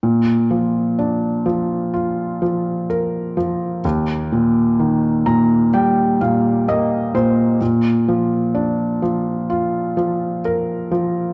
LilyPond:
\new Staff \with { instrumentName = "Felt piano" } { \clef bass \time 4/4 \key bes \mixolydian \tempo 4 = 64 bes,8 f8 d'8 f8 f'8 f8 bes'8 f8 | ees,8 bes,8 ees8 <bes, bes''>8 <g g''>8 <bes, f''>8 <bes ees''>8 <bes, c''>8 | bes,8 f8 d'8 f8 f'8 f8 bes'8 f8 | }